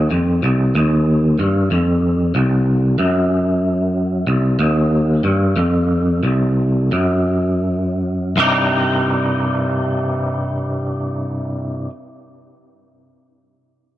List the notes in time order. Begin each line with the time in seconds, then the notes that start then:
0.11 F2
0.43 C2
0.75 D#2
1.39 G2
1.71 F2
2.35 C2
2.99 F#2
4.27 C2
4.59 D#2
5.24 G2
5.56 F2
6.23 C2
6.92 F#2
8.36 C2 G2 C3 G3 D#4